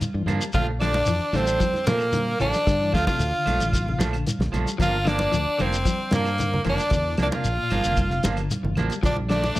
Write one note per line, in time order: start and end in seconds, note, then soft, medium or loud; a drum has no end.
0.01 closed hi-hat medium
0.01 high conga medium
0.01 shekere medium
0.14 0.25 G2 medium
0.14 0.31 E3 medium
0.26 0.38 G2 medium
0.26 0.43 F3 medium
0.26 0.43 A#3 medium
0.26 0.44 D4 medium
0.26 closed hi-hat soft
0.26 high conga medium
0.26 low conga medium
0.26 claves medium
0.26 shekere soft
0.41 0.49 G3 medium
0.41 closed hi-hat soft
0.41 shekere medium
0.53 1.01 A#1 loud
0.53 0.71 F3 medium
0.53 0.70 F3 medium
0.53 0.70 A3 medium
0.53 0.71 D4 medium
0.53 0.66 F4 loud
0.53 0.68 F5 medium
0.53 kick medium
0.53 closed hi-hat medium
0.53 low conga loud
0.53 shekere medium
0.79 0.98 D3 medium
0.79 0.97 F3 medium
0.79 0.97 A3 medium
0.79 1.37 D4 loud
0.79 0.97 D4 medium
0.79 1.36 D5 medium
0.79 snare medium
0.79 closed hi-hat soft
0.79 claves medium
0.93 high conga loud
0.93 shekere soft
1.06 1.19 F2 loud
1.06 1.24 E3 medium
1.06 closed hi-hat medium
1.06 shekere medium
1.20 muted fingered electric bass stroke soft
1.33 1.57 A1 loud
1.33 1.51 D3 medium
1.33 1.47 F3 medium
1.33 1.47 A3 medium
1.33 1.86 C4 medium
1.33 1.46 D4 medium
1.33 1.87 C5 medium
1.33 snare soft
1.33 closed hi-hat soft
1.33 high conga medium
1.33 claves medium
1.33 shekere soft
1.47 1.64 A3 soft
1.47 1.63 D4 medium
1.47 closed hi-hat soft
1.47 shekere medium
1.60 1.77 F3 loud
1.60 kick medium
1.60 closed hi-hat medium
1.60 high conga medium
1.60 claves medium
1.60 shekere medium
1.74 snare soft
1.74 high conga medium
1.86 2.33 A#2 medium
1.86 2.03 C3 medium
1.86 2.03 F3 medium
1.86 2.03 A3 medium
1.86 2.36 A#3 medium
1.86 2.04 D4 medium
1.86 2.37 A#4 medium
1.86 snare medium
1.86 closed hi-hat medium
1.86 high conga loud
1.86 shekere medium
1.99 claves medium
1.99 shekere soft
2.12 2.30 D3 medium
2.12 closed hi-hat medium
2.12 high conga medium
2.12 shekere medium
2.40 2.52 A1 medium
2.40 2.57 E3 medium
2.40 2.56 F3 medium
2.40 2.56 A3 medium
2.40 2.90 D4 loud
2.40 2.57 D4 medium
2.40 2.90 D5 medium
2.40 closed hi-hat soft
2.40 high conga medium
2.40 low conga medium
2.40 claves medium
2.40 shekere soft
2.53 snare soft
2.53 closed hi-hat soft
2.53 shekere medium
2.67 2.90 G2 medium
2.67 2.75 D3 medium
2.67 kick loud
2.67 snare soft
2.67 closed hi-hat medium
2.67 low conga medium
2.67 shekere medium
2.80 2.97 E3 medium
2.93 3.05 D2 medium
2.93 3.06 F3 medium
2.93 3.07 A3 medium
2.93 3.06 D4 medium
2.93 3.06 F4 loud
2.93 3.06 F5 medium
2.93 kick medium
2.93 snare medium
2.93 closed hi-hat medium
2.93 claves medium
3.07 3.23 C3 medium
3.07 3.23 A3 soft
3.07 3.23 D4 soft
3.07 4.09 F4 medium
3.07 4.10 F5 medium
3.07 kick medium
3.07 high conga loud
3.07 shekere soft
3.19 3.31 D2 loud
3.19 closed hi-hat medium
3.19 shekere medium
3.33 3.50 D3 medium
3.33 muted fingered electric bass stroke soft
3.45 3.58 A#1 medium
3.45 3.62 F3 medium
3.45 3.62 A3 medium
3.45 3.63 D4 medium
3.45 snare soft
3.45 closed hi-hat medium
3.45 high conga medium
3.45 claves medium
3.45 shekere soft
3.59 3.94 A1 medium
3.59 3.77 D3 medium
3.59 closed hi-hat medium
3.59 shekere medium
3.73 kick medium
3.73 closed hi-hat medium
3.73 high conga medium
3.73 claves medium
3.73 shekere medium
3.86 4.03 C3 medium
3.86 high conga medium
3.99 4.23 A#1 medium
3.99 4.15 F3 medium
3.99 4.15 A3 medium
3.99 4.16 D4 medium
3.99 snare medium
3.99 closed hi-hat medium
3.99 high conga loud
3.99 shekere medium
4.13 4.29 D3 medium
4.13 closed hi-hat soft
4.13 claves medium
4.13 shekere soft
4.27 closed hi-hat medium
4.27 high conga medium
4.27 shekere loud
4.39 4.51 A#1 medium
4.39 snare medium
4.39 low conga medium
4.52 4.64 A#1 medium
4.52 4.68 F3 medium
4.52 4.69 A3 medium
4.52 4.69 D4 medium
4.52 closed hi-hat medium
4.52 high conga medium
4.52 low conga medium
4.52 claves medium
4.52 shekere soft
4.66 4.74 G3 medium
4.66 closed hi-hat medium
4.66 shekere medium
4.78 5.26 G1 loud
4.78 4.95 F3 medium
4.78 4.96 F3 medium
4.78 4.96 A#3 medium
4.78 4.96 D4 medium
4.78 5.10 F4 loud
4.78 5.08 F5 medium
4.78 kick medium
4.78 closed hi-hat medium
4.78 low conga loud
4.78 shekere medium
5.05 5.22 D3 medium
5.05 5.19 F3 medium
5.05 5.19 A#3 medium
5.05 5.18 D4 medium
5.05 5.63 D4 loud
5.05 5.62 D5 medium
5.05 snare medium
5.05 closed hi-hat medium
5.05 claves medium
5.19 5.36 A#3 soft
5.19 5.35 D4 soft
5.19 high conga medium
5.19 shekere soft
5.32 5.45 D2 medium
5.32 5.48 F3 medium
5.32 closed hi-hat medium
5.32 shekere medium
5.47 muted fingered electric bass stroke soft
5.59 5.83 F1 loud
5.59 5.75 D3 medium
5.59 5.75 F3 medium
5.59 5.76 A#3 medium
5.59 6.13 C4 medium
5.59 5.76 D4 medium
5.59 6.13 C5 medium
5.59 closed hi-hat soft
5.59 high conga medium
5.59 claves medium
5.59 shekere soft
5.72 closed hi-hat soft
5.72 shekere medium
5.85 6.02 F3 medium
5.85 kick medium
5.85 closed hi-hat medium
5.85 high conga medium
5.85 claves medium
5.85 shekere medium
6.11 6.59 G2 medium
6.11 6.29 C3 medium
6.11 6.28 F3 medium
6.11 6.28 A#3 medium
6.11 6.63 A#3 medium
6.11 6.29 D4 medium
6.11 snare medium
6.11 closed hi-hat medium
6.11 high conga loud
6.11 shekere medium
6.16 6.64 A#4 medium
6.25 snare soft
6.25 claves medium
6.25 shekere soft
6.38 6.56 D3 medium
6.38 closed hi-hat medium
6.38 high conga medium
6.38 shekere medium
6.53 low conga medium
6.64 6.77 F1 medium
6.64 6.81 E3 medium
6.64 6.81 F3 medium
6.64 6.81 A#3 medium
6.64 6.81 D4 medium
6.64 closed hi-hat medium
6.64 high conga medium
6.64 low conga medium
6.64 claves medium
6.64 shekere soft
6.69 7.17 D4 medium
6.69 7.17 D5 medium
6.78 closed hi-hat soft
6.78 shekere medium
6.90 7.15 E2 medium
6.90 6.99 D3 medium
6.90 kick loud
6.90 closed hi-hat medium
6.90 low conga medium
6.90 shekere medium
7.04 7.21 E3 medium
7.17 7.30 C2 medium
7.17 7.31 F3 medium
7.17 7.30 A#3 medium
7.17 7.29 D4 medium
7.17 snare medium
7.17 closed hi-hat medium
7.17 claves medium
7.22 7.27 D4 medium
7.22 7.28 D5 medium
7.30 7.47 C3 medium
7.30 7.47 A#3 soft
7.30 7.47 D4 soft
7.30 8.34 F4 medium
7.30 high conga loud
7.30 shekere soft
7.36 8.35 F5 medium
7.44 7.57 A#1 medium
7.44 closed hi-hat medium
7.44 shekere medium
7.58 7.74 A#2 medium
7.58 muted fingered electric bass stroke soft
7.70 7.83 G1 medium
7.70 7.84 F3 medium
7.70 7.85 A#3 medium
7.70 7.84 D4 medium
7.70 closed hi-hat medium
7.70 high conga medium
7.70 claves medium
7.70 shekere soft
7.84 8.19 F1 medium
7.84 8.00 D3 medium
7.84 8.01 A#3 soft
7.84 8.00 D4 soft
7.84 closed hi-hat medium
7.84 shekere medium
7.97 kick medium
7.97 closed hi-hat medium
7.97 high conga medium
7.97 claves medium
7.97 shekere medium
8.11 8.27 C3 medium
8.11 snare soft
8.11 high conga medium
8.23 8.47 G1 medium
8.23 8.40 F3 medium
8.23 8.40 A#3 medium
8.23 8.41 D4 medium
8.23 snare medium
8.23 closed hi-hat medium
8.23 high conga loud
8.23 shekere medium
8.37 8.53 D3 medium
8.37 snare soft
8.37 closed hi-hat medium
8.37 claves medium
8.37 shekere soft
8.51 closed hi-hat medium
8.51 high conga medium
8.51 shekere medium
8.63 8.75 G1 medium
8.63 8.80 E3 medium
8.63 low conga medium
8.76 8.89 A1 medium
8.76 8.93 F3 medium
8.76 8.93 A#3 medium
8.76 8.94 D4 medium
8.76 snare soft
8.76 closed hi-hat medium
8.76 high conga medium
8.76 low conga medium
8.76 claves medium
8.76 shekere soft
8.90 8.98 G3 medium
8.90 closed hi-hat medium
8.90 shekere medium
9.03 9.49 A#1 loud
9.03 9.19 F3 medium
9.03 9.20 D4 medium
9.03 9.17 D4 medium
9.03 9.16 D5 medium
9.03 muted clean electric guitar stroke medium
9.03 kick medium
9.03 closed hi-hat medium
9.03 low conga medium
9.03 shekere medium
9.16 high conga medium
9.28 9.46 D3 medium
9.28 9.43 F3 medium
9.28 9.43 A3 medium
9.28 9.60 D4 medium
9.28 9.42 D4 medium
9.28 9.60 D5 medium
9.28 snare medium
9.28 closed hi-hat soft
9.28 claves medium
9.44 9.60 A3 soft
9.44 9.59 D4 soft
9.44 high conga medium
9.44 shekere soft
9.56 9.60 F2 loud
9.56 9.60 A3 medium
9.56 shekere medium